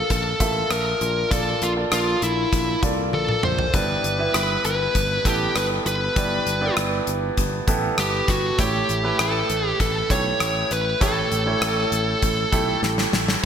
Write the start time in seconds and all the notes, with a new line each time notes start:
Already playing: A#2 A#3 F4 A4 D5 F5
0.10 A#1 A4, kick, closed hi-hat
0.40 A1 A#3 F4 E5 A5, kick, closed hi-hat
0.71 A#1 A#4, cross-stick, closed hi-hat
1.01 A#1 A#2, closed hi-hat
1.31 A#1 A#3 F4 A4 D5, kick, closed hi-hat
1.62 A#1 F4, closed hi-hat
1.76 A#3 F4 A4 D5
1.92 A#1 F4, cross-stick, closed hi-hat
2.22 A#1 E4, closed hi-hat
2.53 A#1, kick, closed hi-hat
2.82 C2 A#3 F4 A4 D5, kick, closed hi-hat
3.13 A#1 A4, high tom
3.28 mid tom
3.43 A#1 C5, mid tom
3.59 floor tom
3.73 G1 G2 B3 E4 G4 B4 D5, kick, closed hi-hat
4.04 G1, closed hi-hat
4.18 B3 E4 G4 E5
4.34 G1 B4, cross-stick, closed hi-hat
4.65 G1 B4, closed hi-hat
4.95 G1, kick, closed hi-hat
5.25 A1 B3 E4 G4 A4, kick, closed hi-hat
5.56 G1 B4, cross-stick, closed hi-hat
5.86 G1 B4, closed hi-hat
6.16 G1 G2 B3 E4 G4 D5, kick, closed hi-hat
6.47 G1, closed hi-hat
6.61 B3 E4 G4 D5
6.77 G1, cross-stick, closed hi-hat
7.07 G1, closed hi-hat
7.37 G1, kick, closed hi-hat
7.67 A1 B3 E4 G4 A4, kick, closed hi-hat
7.98 G1 G4, cross-stick, closed hi-hat
8.28 G1 F#4, kick, closed hi-hat
8.58 A1 A2 A3 E4 G4 C#5, kick, closed hi-hat
8.89 A1, closed hi-hat
9.03 A3 E4 G4 B4
9.19 A1 A4, cross-stick, closed hi-hat
9.50 A1, closed hi-hat
9.68 G4
9.80 A1 A4, kick, closed hi-hat
10.10 B1 A3 E4 G4 C#5, kick, closed hi-hat
10.40 A1, cross-stick, closed hi-hat
10.71 A1 B4, closed hi-hat
11.00 A1 A2 A3 E4 G4 A4 C#5, kick, closed hi-hat
11.32 A1, closed hi-hat
11.46 A3 E4 G4 C#5
11.61 A1, cross-stick, closed hi-hat
11.92 A1, closed hi-hat
12.22 A1, kick, closed hi-hat
12.52 B1 A3 E4 G4 A4, kick, closed hi-hat
12.82 A1, snare
12.98 snare
13.13 A1, snare
13.28 snare